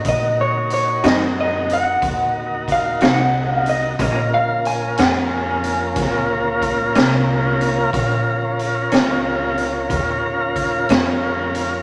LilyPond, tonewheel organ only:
\new Staff \with { instrumentName = "Tonewheel organ" } { \time 12/8 \key bes \minor \tempo 4. = 61 <ees' ges' bes'>1. | <bes des' f' bes'>1. | <des' f' bes'>1. | }